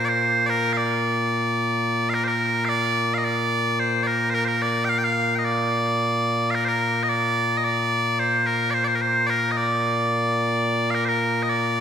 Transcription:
bagpipes
Already playing: A#2 A#3
0.05 C5 D5
0.46 A#4 D5
0.73 F5
0.77 D5
2.10 F5
2.14 A#4
2.24 A#4 C5
2.65 D5 F5
3.14 D#5 F5
3.25 D5
3.79 C5
4.03 A#4 D5
4.30 C5
4.34 A#4
4.45 A#4 C5
4.62 D5
4.85 G5
4.89 F5
4.98 G5
5.04 F5
5.35 D#5 G5
5.45 D5
6.51 F5
6.55 A#4
6.65 A#4 C5
7.03 D#5
7.09 D5
7.58 D#5
7.64 D5
8.19 C5
8.46 A#4
8.70 C5 D5
8.84 C5 D5
8.95 A#4
9.02 C5
9.27 A#4 D5
9.51 D#5
9.57 D5
10.91 A#4 F5
11.05 A#4 C5
11.43 D#5
11.50 D5

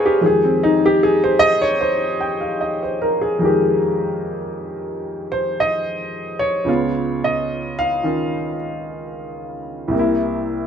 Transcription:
grand piano
Already playing: A#2 G#3 C4 C#4 G#4 A#4 B4 C5 C#5 D#5 F5 G5
0.06 G4
0.21 F2 D#3 G#3 G4
0.26 G#4
0.44 C4
0.63 D#4
0.86 G4
1.03 G#4
1.24 C5
1.39 D#5
1.62 C#5
1.81 C5
2.21 G5
2.41 F5
2.61 D#5
2.83 C5
3.02 A#4
3.21 G#4
3.39 F2 D#3
3.43 G#3 G4
5.32 C5
5.60 D#5
6.39 C#5
6.64 C#2 C#3 B3
6.68 F4
7.24 D#5
7.79 F5
8.03 D#3 C#4 F4
9.88 C2 C3
9.94 A#3
9.99 E4

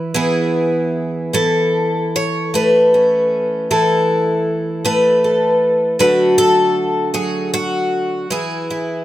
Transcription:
twelve-string acoustic guitar
Already playing: E3 E4 B4
0.14 E3 B3 E4 G#4
1.33 E3 A4
2.16 C#5
2.54 A3 B4
2.94 C#4
3.71 E3 A4
4.85 A3 B4
5.24 A4
5.99 D3 F#3 A3 F#4 B4
6.38 A4
7.14 F#3 G#4
7.54 F#4
8.31 E3 G#4
8.70 E4

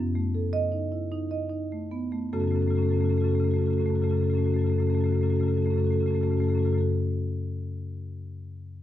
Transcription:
marimba
Already playing: F#2
0.15 A3
0.34 A4
0.53 D#5
0.72 D#4
0.92 E4
1.12 D#4
1.31 D#5
1.50 D#4
1.72 A3
1.91 B3
2.12 A3
2.33 F#2 C#3 A3 C#4 F#4 A4
2.40 F#2 C#3 A3 C#4 F#4 A4
2.47 A3 C#4 F#4 A4
2.52 F#2 C#3 C#4 F#4 A4
2.59 C#3 A3 C#4 F#4 A4
2.67 F#2 C#3 A3 C#4 F#4 A4
2.75 F#2 C#3 A3 C#4 F#4 A4
2.82 A3 C#4 F#4 A4
2.87 F#2 C#3 F#4 A4
2.93 C#3 A3 C#4 A4
2.98 F#2 A3 F#4
3.02 C#3 C#4 F#4 A4
3.09 F#2 A3 C#4 F#4 A4
3.13 C#3 C#4 A4
3.18 C#3 A3 F#4
3.24 F#2 A3 C#4 A4
3.28 C#3 F#4 A4
3.33 F#2 A3 C#4 F#4
3.38 C#3 C#4 A4
3.43 F#2 A3 F#4 A4
3.48 C#3 C#4 F#4 A4
3.54 F#2 A3 C#4
3.58 C#3 A3 F#4 A4
3.63 C#4 F#4 A4
3.68 F#2 C#3 A3 C#4
3.73 C#3 F#4 A4
3.78 F#2 A3 C#4 F#4 A4
3.85 C#3 A3 C#4 A4
3.89 F#2 F#4
3.94 C#3 A3 C#4 F#4 A4
4.00 F#2 C#3 A3 C#4 F#4 A4
4.09 F#2 C#3 C#4 F#4 A4
4.14 A3 F#4 A4
4.19 F#2 C#3 A3 C#4
4.23 C#4 F#4 A4
4.29 C#3 A3 F#4 A4
4.34 F#2 C#3 C#4 F#4
4.38 A3 A4
4.43 F#2 C#3 A3 C#4 F#4 A4
4.50 A3 C#4 F#4 A4
4.55 F#2 C#3 C#4 F#4
4.61 C#3 A3 A4
4.66 F#2 A3 C#4 F#4 A4
4.72 C#3 C#4 F#4 A4
4.77 F#2 C#3 A3 F#4
4.82 C#4 A4
4.87 F#2 C#3 A3 C#4 F#4 A4
4.94 C#3 A3 F#4 A4
4.99 F#2 C#4 F#4
5.04 C#3 A3 C#4 A4
5.09 F#2 A3 F#4 A4
5.15 C#3 C#4 F#4 A4
5.21 F#2 C#3 A3 C#4 F#4
5.26 A4
5.30 F#2 C#3 A3 C#4 F#4 A4
5.36 A3 C#4 F#4
5.40 F#2 C#3 F#4 A4
5.46 C#3 A3 C#4 F#4 A4
5.54 F#2 C#3 A3 C#4 F#4 A4
5.62 A3 C#4 F#4 A4
5.67 F#2 C#3 C#4 A4
5.72 A3 F#4
5.76 F#2 C#3 C#4 A4
5.80 A3 F#4
5.84 F#2 C#3 C#4 F#4 A4
5.91 C#3 A3 C#4 F#4 A4
5.98 F#2 A3 C#4 F#4 A4
6.03 C#3 A3 A4
6.08 F#2 C#4 F#4
6.12 C#3 A3 C#4 F#4 A4
6.21 F#2 C#3 A3 C#4 F#4 A4
6.27 C#3 F#4 A4
6.32 F#2 A3 C#4 A4
6.37 C#3 A3 C#4 F#4
6.41 F#2 F#4 A4
6.47 C#3 A3 C#4 A4
6.52 F#2 C#4 F#4 A4
6.57 C#3 A3 F#4
6.63 F#2 C#3 A3 C#4 F#4 A4
6.70 F#2 C#3 A3 C#4 F#4 A4
6.78 C#4 F#4 A4

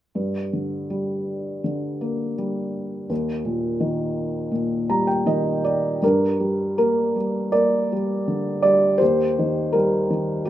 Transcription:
felt piano
0.15 G2
0.53 D3
0.90 G3
1.64 D3
2.01 A#3
2.38 G3
3.10 D#2
3.45 A#2
3.80 D#3
4.51 A#2
4.90 G3 A#5
5.07 G5
5.26 D#3 D#5
5.64 D5
6.02 G2 D4 A#4
6.40 G3
6.78 A#3 A#4
7.16 G3
7.52 A#3 A#4 D5
7.92 G3
8.28 D3
8.62 G3 D5
8.98 D#2 G4 C5
9.39 D#3
9.73 G3 A#4
10.10 D#3
10.45 G4

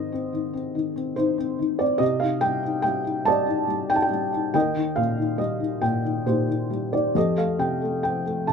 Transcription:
felt piano
Already playing: G#2 D#3 C4 A#4 C5 D#5
0.12 C4
0.33 D#3
0.53 C4
0.75 D#3
0.96 C4
1.16 D#3 D#4 C5
1.38 C4
1.59 D#3
1.79 C4 D5
1.98 C3 G4 D#5
2.20 D#4 F5
2.41 G3 G5
2.63 D#4
2.82 G3 G5
3.04 D#4
3.25 G3 D5 D#5 A5
3.46 D#4
3.68 G3
3.90 D#4 G5
3.96 A5
4.02 G5
4.11 G3
4.32 D#4
4.54 D#2 A#4 D#5 G5
4.76 D#3
4.96 A#2 F5
5.18 D#3
5.38 G3 D#5
5.60 D#3
5.82 A#2 G5
6.04 D#3
6.26 A#2 D#4 G4 C5
6.49 D#3
6.70 G3
6.93 D#3 D5
7.15 F2 G4 A4 D#5
7.37 A3 F5
7.59 C3 G5
7.82 A3
8.03 C4 G5
8.26 A3
8.47 C3 A5

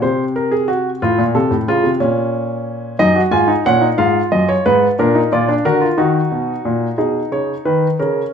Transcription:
grand piano
0.02 C3 C5
0.36 A#4
0.52 G#4
0.68 F#4
1.02 A2 F4
1.18 A#2
1.35 C3 A4
1.51 A2
1.68 C#3 F4
1.84 C3
2.00 A#2 C#4
2.99 F#2 D#4 D#5
3.16 F#4
3.31 G#2 F4 G#5
3.48 D#4
3.66 A#2 C#4 F#5
3.81 D#4
3.98 G#2 F4 F5
4.32 F#2 D#5
4.49 C#5
4.66 G#2 B4
4.99 A#2 D4 A#4
5.15 D#4
5.32 A#2 F4 D5
5.49 D4
5.65 D3 F#4 A#4
5.81 F4
5.98 D#3 D#4 F#4
6.32 B2
6.65 A#2
6.98 B2 D#4 G#4
7.32 C#3 C#5
7.65 D#3 B4
7.99 C#3 C#4 A#4

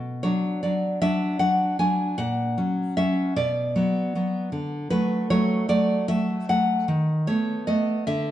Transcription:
nylon-string guitar
Already playing: B2
0.23 F#3 D4 C#5
0.63 F#3 D4 D5
1.02 F#3 D4 E5
1.39 F#3 D4 F#5
1.79 F#3 D4 G#5
2.18 A#2 F#5
2.58 F#3 C#4
2.97 F#3 C#4 E5
3.36 B2 D5
3.76 F#3 B3
4.15 F#3 B3
4.52 D3
4.90 F#3 A3 B4
5.30 F#3 A3 C#5
5.69 F#3 A3 D5
6.08 F#3 A3 E5
6.49 F#3 A3 F#5
6.88 D#3
7.27 A3 B3 C#5
7.67 A3 B3 D#5
8.07 D3 E5

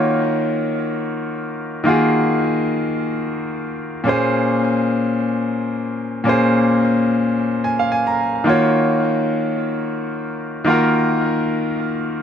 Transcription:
grand piano
Already playing: D#3 A#3 F4 F#4 C#5
1.84 D#3 A#3 F4 F#4
1.89 G#4
4.04 A#2 A#3 C#4 G#4
4.09 C5
6.24 A#2 A#3 C#4 G#4
6.29 C5
7.64 G#5
7.79 F5
7.92 G#5
8.07 A#5
8.44 D#3 A#3 F4 F#4
8.49 C#5
10.65 D#3 A#3 F4 F#4
10.70 A#4

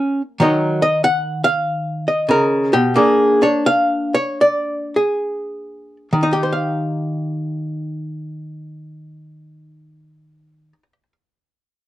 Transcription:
hollow-body jazz guitar
Already playing: A#3 C#4 G#4
0.40 D#3 F#3 C#5 D#5
0.82 D#5
1.04 F#5
1.44 F5
2.08 D#5
2.29 C#3 A#4
2.73 B2 G4
2.96 A#3 D4 G#4
3.42 D4 C#5
3.66 F5
4.14 C#5
4.41 D5
4.96 G#4
6.13 D#3
6.23 D#4
6.33 G4
6.43 C5
6.53 F5

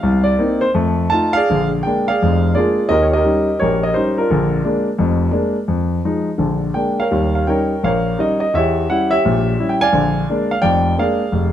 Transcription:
grand piano
Already playing: F5
0.03 C2
0.24 D5
0.38 A#3 C4 D#4
0.61 C5
0.74 F2 A3
1.10 A3 D#4 F4 A5
1.33 G#4 D5 F5
1.50 A#1 D3
1.83 G#3 A#3 D4 G5
2.08 G#4 D5 F5
2.22 F1 F2
2.55 G#3 A#3 D4 F4 G#4 D5
2.89 D#2 G4 A#4 D#5
3.02 C#5
3.13 G4 A#4 D#5
3.24 G3 C#4 D#4
3.60 A#1 G4 A#4 C#5
3.83 D#5
3.94 G3 C#4 D#4 C5
4.18 D4 F4 A#4
4.30 A#1 D3
4.64 G#3 A#3 D4
4.99 F1 F2
5.31 G#3 A#3 D4
5.68 F2
6.05 F3 G#3 D#4
6.38 A#1 D3
6.74 G#3 A#3 D4 G5
7.00 A#4 C#5 F5
7.11 D#2 G3
7.35 F5
7.47 G3 C#4 D#4 A#4 C#5 G5
7.83 A#1 A#4 C#5 F5
8.19 G3 C#4 D#4 D#5
8.40 D#5
8.54 E2 G4 C#5 E5
8.90 G3 C#4 E4 F#5
9.11 G4 C#5 E5
9.25 A#1 A#2
9.60 G3 C#4 E4
9.69 G5
9.81 D5 F5 G#5
9.93 A#1 D3
10.29 G#3 A#3 D4
10.51 F5
10.62 F1 F2 D5 G5
10.98 G#3 A#3 D4 G#4 D5 F5
11.32 F1

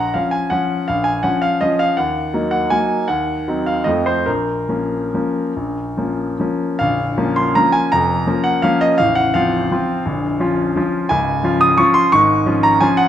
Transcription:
grand piano
Already playing: A#1 F#5
0.14 F3 C#4 F5
0.31 G#5
0.50 F3 C#4 F#5
0.88 A#1 F5
1.04 G#5
1.23 F3 C#4 F#5
1.42 F5
1.61 F3 C#4 D#5
1.79 F5
1.97 D#2 F#5
2.34 F#3 A#3 D#4
2.51 F#5
2.70 F#3 A#3 D#4 G#5
3.08 D#2 F#5
3.48 F#3 C4 D#4
3.66 F5
3.84 F2 F3 A3 C4 D#5
4.06 C5
4.26 A#1 A#4
4.69 F3 A#3 C#4
5.14 F3 A#3 C#4
5.56 A#1
5.97 F3 A#3 C#4
6.40 F3 A#3 C#4
6.79 A#0 A#1 F5
7.17 F3 A#3 C#4
7.36 C6
7.55 F3 A#3 C#4 A#5
7.72 G#5
7.92 F1 F2 A#5
8.27 F3 A#3 C#4
8.44 F#5
8.62 F3 A#3 C#4 F5
8.81 D#5
8.98 A0 A1 F5
9.15 F#5
9.34 F3 C4 F4 F5
9.71 F3 C4 F4
10.05 A#0 A#1
10.40 F3 C#4 F4
10.76 F3 C#4 F4
11.09 C#1 C#2 G#5
11.44 F3 C#4 F4
11.61 D#6
11.78 F3 C#4 F4 C#6
11.94 C6
12.12 G#1 G#2 C#6
12.46 F3 C#4 F4
12.63 A#5
12.80 F3 C#4 F4 G#5
12.97 F#5

